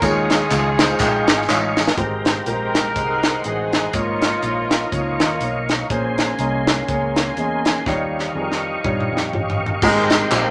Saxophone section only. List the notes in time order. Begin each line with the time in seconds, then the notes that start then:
0.03 C#4 F4 G#4
2.47 D#4 G4 A#4
3.46 D#4 G#4
3.94 A#3 C#4 F4
4.93 A#3 C#4 F4
9.83 C3 D#3 G#3
10.32 D#3 G3 A#3